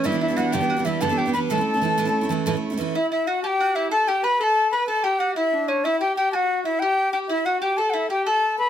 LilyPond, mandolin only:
\new Staff \with { instrumentName = "Mandolin" } { \time 9/8 \key a \mixolydian \tempo 4. = 124 e'8 e'8 fis'8 g'8 fis'8 e'8 a'8 g'8 b'8 | a'2.~ a'8 r4 | e'8 e'8 fis'8 g'8 fis'8 e'8 a'8 g'8 b'8 | a'4 b'8 a'8 g'8 fis'8 e'4 cis'8 |
e'8 g'8 g'8 fis'4 e'8 g'4 g'8 | e'8 fis'8 g'8 a'8 e'8 g'8 a'4. | }